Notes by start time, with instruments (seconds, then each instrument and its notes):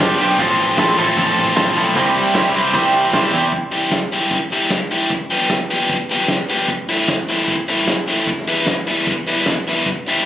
0.00 picked electric bass G1, overdriven electric guitar G2 D3 F3 G3 B3 G4, clean electric guitar C4 D4, snare
0.19 picked electric bass B1, overdriven electric guitar G2 D3 F3 G3 B3 G4, clean electric guitar C4 D4, open hi-hat
0.38 picked electric bass A1, overdriven electric guitar A2 F3 A3 C4 F4, clean electric guitar A4, kick
0.59 picked electric bass A1, open hi-hat
0.78 picked electric bass A1, overdriven electric guitar A2 F3 A3 C4 F4, clean electric guitar E4 A4, kick, snare, clap
0.98 picked electric bass A1, overdriven electric guitar A2 F3 A3 C4 F4, clean electric guitar E4 A4, open hi-hat
1.17 picked electric bass A1, overdriven electric guitar A2 F3 A3 C4 F4, clean electric guitar A4, kick
1.38 picked electric bass A1, open hi-hat
1.56 picked electric bass A1, overdriven electric guitar A2 F3 A3 C4 F4, clean electric guitar E4 A4, kick, snare, clap
1.76 picked electric bass B1, overdriven electric guitar A2 F3 A3 C4 F4, clean electric guitar E4 A4, open hi-hat
1.96 picked electric bass C2, overdriven electric guitar C3 E3 G3 C4, clean electric guitar G4, kick
2.00 overdriven electric guitar E4
2.16 picked electric bass C2, open hi-hat
2.34 picked electric bass C2, overdriven electric guitar C3 E3 G3 C4 E4, clean electric guitar G4, kick, snare, clap
2.54 overdriven electric guitar C3 E3 G3 C4 E4, clean electric guitar G4, open hi-hat
2.73 picked electric bass C2, overdriven electric guitar C3 E3 G3 C4 E4, clean electric guitar G4, kick
2.93 picked electric bass C2, open hi-hat
3.13 picked electric bass C2, overdriven electric guitar C3 E3 G3 C4 E4, clean electric guitar G4, kick, snare, clap
3.31 picked electric bass E2, overdriven electric guitar C3 E3 G3 C4 E4, clean electric guitar G4, open hi-hat
3.52 kick
3.72 overdriven electric guitar E3 G3 E4 G4, closed hi-hat
3.92 kick, snare
4.11 overdriven electric guitar E3 G3 E4 G4, closed hi-hat
4.31 kick
4.50 overdriven electric guitar E3 G3 E4 G4, closed hi-hat
4.70 kick, snare
4.91 overdriven electric guitar E3 G3 E4 G4, closed hi-hat
5.10 kick
5.30 overdriven electric guitar F3 G3 B3 G4, closed hi-hat
5.50 kick, snare
5.70 overdriven electric guitar F3 G3 B3 G4, closed hi-hat
5.89 kick
6.09 overdriven electric guitar F3 G3 B3 G4, closed hi-hat
6.28 kick, snare
6.48 overdriven electric guitar F3 G3 B3 G4, closed hi-hat
6.68 kick
6.88 overdriven electric guitar E3 A3 C4 E4, closed hi-hat
7.08 kick, snare
7.28 overdriven electric guitar E3 A3 C4 E4, closed hi-hat
7.48 kick
7.68 overdriven electric guitar E3 A3 C4 E4, closed hi-hat
7.88 kick, snare
8.07 overdriven electric guitar E3 A3 C4 E4, closed hi-hat
8.27 kick
8.38 snare
8.47 overdriven electric guitar E3 G3 B3 E4, closed hi-hat
8.66 kick, snare
8.87 overdriven electric guitar E3 G3 B3 E4, closed hi-hat
9.07 kick
9.26 overdriven electric guitar E3 G3 B3 E4, closed hi-hat
9.46 kick, snare
9.66 overdriven electric guitar E3 G3 B3 E4, closed hi-hat
9.86 kick
10.06 overdriven electric guitar E3 G3 C4 E4, closed hi-hat